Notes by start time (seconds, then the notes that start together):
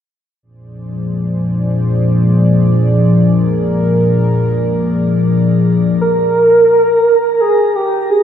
0.43 A#2 F3 G#4 C5 D5
3.22 A#4
6.01 A#4
7.40 G#4
7.75 G4
8.10 G#4